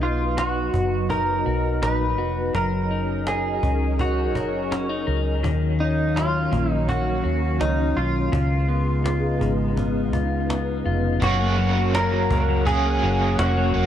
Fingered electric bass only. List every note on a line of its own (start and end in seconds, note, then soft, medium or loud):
0.00 0.70 B1 medium
0.74 1.43 F#1 medium
1.46 1.81 B1 medium
1.83 2.19 A#1 medium
2.19 2.53 F1 medium
2.55 3.59 F#1 medium
3.63 4.35 C#2 medium
4.35 5.04 F#1 medium
5.08 5.44 C#2 medium
5.44 6.48 D#2 medium
6.53 7.21 A#1 medium
7.25 7.59 D#2 medium
7.61 7.95 C#2 medium
7.97 8.31 B1 medium
8.33 9.37 C#2 medium
9.41 10.13 G#1 medium
10.13 10.82 C#2 medium
10.86 11.20 F1 medium
11.22 12.27 F#1 loud
12.31 12.99 C#2 medium
13.03 13.37 F#1 medium
13.39 13.73 F1 loud
13.75 13.86 F1 medium